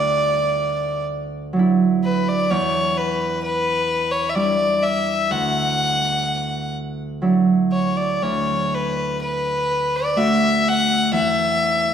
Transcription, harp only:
Already playing: D2 E4 F#4
1.53 F#3 D4
1.59 E4
2.51 E2
4.35 G3 D4 E4
5.31 D2
7.22 F#3 D4 E4
8.22 D2
10.16 A3 D4 F#4
11.12 E2

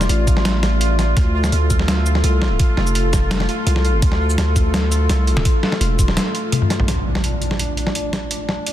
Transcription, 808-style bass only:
0.09 A1
1.17 D2
1.52 D2
2.24 C2
2.77 F1
3.67 C2
4.02 D2
4.38 D2
5.09 C2
5.81 E1

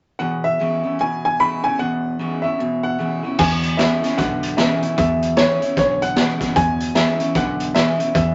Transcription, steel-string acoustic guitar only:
0.20 E2
0.59 E3 G#3 C#4 E4
0.83 C#4 E4
0.99 B2
1.39 E3 G#3 C#4 E4
1.65 C#4 E4
1.79 E2
2.19 E3 G#3 C#4 E4
2.44 C#4 E4
2.60 B2
2.98 E3 G#3 C#4 E4
3.24 C#4 E4
3.40 E2
3.78 E3 G#3 C#4 E4
4.02 C#4 E4
4.18 B2
4.58 E3 G#3 C#4 E4
4.82 C#4 E4
4.99 E2
5.38 E3 G#3 C#4 E4
5.62 C#4 E4
5.77 B2
6.17 E3 G#3 C#4 E4
6.42 C#4 E4
6.56 E2
6.95 E3 G#3 C#4 E4
7.20 C#4 E4
7.35 B2
7.74 E3 G#3 C#4 E4
8.00 C#4 E4
8.15 E2

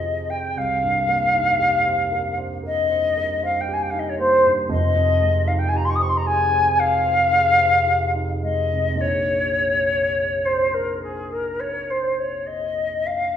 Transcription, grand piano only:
Already playing: F2 C3 C4 F4 G#4 C5
0.03 G#4
0.30 C5
0.57 C2
0.82 G2
1.09 A#3
1.34 D#4
1.59 G4
1.85 C5
2.12 A#4
2.38 C5
2.63 A#4
2.90 C5
3.17 A#4
3.43 C5
3.68 G4
3.93 D#4
4.19 A#3
4.44 G2
4.69 F1 F2
4.96 C3
5.21 G#3
5.47 D#4
5.74 G4
6.00 C5
6.26 G#4
6.52 C5
6.79 G#4
7.06 C5
7.32 G#4
7.58 C5
7.87 G4
8.14 D#4
8.43 G#3
8.72 C3
8.95 A#1 A#3 D#4 G#4 C5

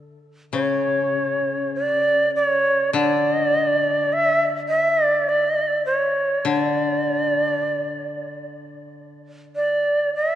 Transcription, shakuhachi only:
0.53 C#5
1.75 D5
2.36 C#5
2.93 D5
4.13 E5
4.68 E5
5.04 D5
5.29 D5
5.86 C#5
6.47 C#5
6.58 D5
9.56 D5
10.15 E5

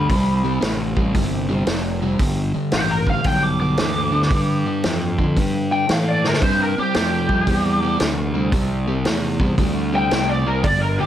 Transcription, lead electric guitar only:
Already playing: B5
2.74 G4
2.91 A#4
3.10 F5
3.26 G5
3.43 D6
3.60 D6
5.72 G5
5.92 F5
6.08 D5
6.28 A#4
6.43 C5
6.62 A#4
6.80 G4
6.96 G4
9.96 G5
10.13 G5
10.29 D5
10.47 A#4
10.64 D5
10.82 A#4
10.98 G4

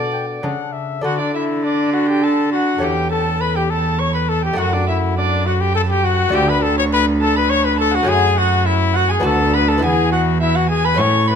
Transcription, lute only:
Already playing: B2 D4 A4
0.43 C#3 D4 A4
1.01 D3 D4 A4
2.78 A3 C#4 A4
2.83 E2
4.53 A3 F#4
4.58 F#2
6.29 A3 D4 F#4
6.33 D2
8.03 A3 C#4 F#4
8.08 F#2
9.20 B3 F#4
9.24 D2
9.78 B3 E4
9.82 E2
10.94 A3 C#4 E4
10.99 A2

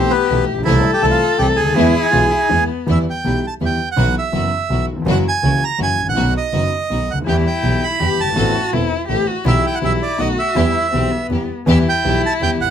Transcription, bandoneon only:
Already playing: C4
0.10 B3
0.65 E4
0.93 G4
1.02 A4
1.11 F4
1.38 G4
1.56 G#4
2.91 E5
3.10 G5
3.47 A5
3.66 G5
3.92 F#5
4.18 E5
5.11 F#5
5.28 G#5
5.64 A#5
5.83 G#5
6.09 F#5
6.37 D#5
7.11 F#5
7.29 G5
7.47 G5
7.83 B5
8.20 A5
9.48 E5
9.66 G5
9.75 F#5
9.85 E5
10.02 D5
10.20 D#5
10.39 E5
11.71 E5
11.89 G5
12.26 A5
12.43 G5
12.61 F#5

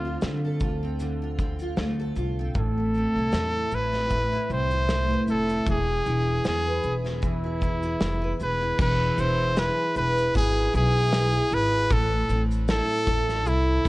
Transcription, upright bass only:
Already playing: D2
0.23 D3
0.61 D2
1.78 D2
2.16 C2
2.55 A1
3.15 C2
3.33 E2
3.72 A1
4.50 C2
5.27 F1
5.67 E1
6.06 E1
6.45 E2
6.84 E1
8.01 F1
8.40 E1
8.79 E1
9.18 E1
9.96 E1
10.35 G#1
10.74 B1
11.52 G#1
11.91 A1
12.29 A1
13.07 A1
13.46 C2
13.85 A1

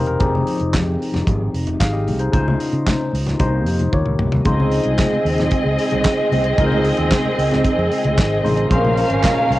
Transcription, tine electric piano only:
Already playing: C3 C4 D#4 G4 A#4 C5 D#5 F5 G5 A#5
0.07 A#4
0.19 F3 C4 D#4 G4 G#4
1.80 G#4 F5
1.93 G4 D#5
2.20 D#4 C5
2.31 C#3 C#4 D#4 F4 C5
3.39 C3 A#3 D#4 G4 C5
3.92 D#3 A#3 F4 G4 C#5
4.44 C#3 G#3 D#4 F4 C5
6.57 C#3 G#3 D#4 F4 A#4
6.66 C5
8.43 C#3 G#3 D#4 F4 C5
8.69 A#2 A#3 C4 G#4 C5
8.77 C#4

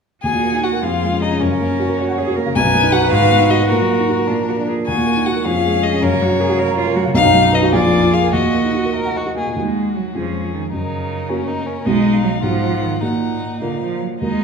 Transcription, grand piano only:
0.23 D#2
0.33 A#2
0.43 A#3
0.54 D#4
0.63 F#4
0.73 A#4
0.83 F2
0.93 F3
1.02 G#3
1.12 C#4
1.22 G#4
1.32 C#4
1.42 F#2
1.51 C#3
1.60 A#3
1.71 C#4
1.80 F#4
1.89 A#4
1.99 C#5
2.09 F#5
2.18 C#5
2.27 F#4
2.37 A#3
2.46 C#3
2.56 B1
2.65 F#2
2.74 B3
2.83 D#4
2.92 F#4
3.02 B4
3.12 G#2
3.22 D#3
3.31 B3
3.40 D#4
3.50 F#4
3.61 B4
3.71 A#2
3.80 F#3
3.90 A#3
4.00 D#4
4.09 F#4
4.19 A#4
4.29 A#2
4.39 F3
4.48 A#3
4.59 D4
4.68 F4
4.78 A#4
4.88 D#2
4.97 A#2
5.07 A#3
5.17 D#4
5.26 F#4
5.36 A#4
5.46 F2
5.55 F3
5.65 G#3
5.75 C#4
5.84 G#4
5.93 C#4
6.02 F#2
6.12 C#3
6.22 F#3
6.31 C#4
6.40 A#4
6.49 F#4
6.59 C#5
6.68 A#5
6.77 C#5
6.87 A#4
6.96 F#3
7.05 C#3
7.14 B1
7.24 F#2
7.34 F#3
7.43 D#4
7.53 B4
7.63 F#4
7.72 A#1
7.83 F2
7.93 A#3
8.03 F4
8.13 G#4
8.23 A#4
8.33 D#2
8.44 A#2
8.54 A#3
8.65 D#4
8.75 F#4
8.85 A#4
8.95 D#5
9.05 F#5
9.16 D#5
9.26 F#4
9.36 A#3
9.46 A#2
9.56 D#2 A#3 D#4 F#4
10.15 F2 G#3 C#4 G#4
10.73 F#2
11.29 A#3 C#4 F#4
11.86 B1 B3 D#4 F#4
12.42 G#2 B3 D#4 F#4
13.01 A#2 A#3 D#4 F#4
13.61 A#2 A#3 F4 A#4
14.21 D#2 A#3 F#4 A#4

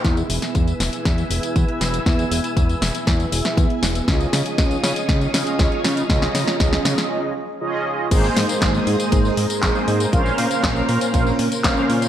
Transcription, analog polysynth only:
0.04 B3 E4 G#4 E5
1.31 B3 E4 G#4 E5
2.06 B3 E4 G#4 E5
3.32 B3 E4 G#4 E5
4.08 C#4 F4 G#4 D#5
5.34 C#4 F4 G#4 D#5
6.10 C#4 F4 G#4 D#5
7.61 C#4 F4 G#4 D#5
8.11 A#3 D#4 G#4 C5
9.63 A#3 D#4 G#4 C5
10.13 C#4 A#4 C5 F5
11.64 C#4 A#4 C5 F5

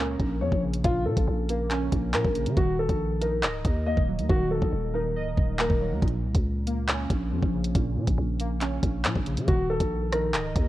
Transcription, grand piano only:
Already playing: A#4
0.41 C#5
0.84 F4
1.05 A4
1.49 A#4
2.14 A#4
2.57 F#4
2.79 A4
3.21 A#4
3.86 D#5
4.29 F#4
4.51 A4
4.94 A#4
5.60 A#4
9.48 F#4
9.70 A4
10.12 A#4

